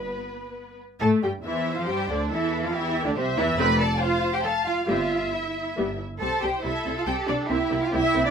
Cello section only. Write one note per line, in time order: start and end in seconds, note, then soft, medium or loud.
1.01 1.09 A4 loud
1.23 1.31 G4 medium
1.45 1.76 E4 medium
1.78 1.88 F4 medium
1.88 2.09 G4 loud
2.09 2.31 D4 loud
2.32 2.64 E4 loud
2.64 2.75 F4 loud
2.75 3.07 E4 loud
3.07 3.11 D4 loud
3.17 3.25 C4 loud
3.37 3.45 E4 loud
3.59 3.80 B4 loud
3.80 4.01 A4 loud
4.01 4.33 F4 loud
4.33 4.38 G4 loud
4.44 4.52 A4 loud
4.65 4.86 F4 loud
4.88 5.31 F4 loud
5.32 5.98 E4 medium
6.21 6.41 A4 loud
6.43 6.64 G4 medium
6.64 6.96 E4 loud
6.97 7.02 F4 medium
7.08 7.28 G4 loud
7.28 7.50 D4 loud
7.50 7.83 E4 loud
7.84 7.94 F4 loud
7.93 8.26 E4 loud
8.27 8.31 D4 loud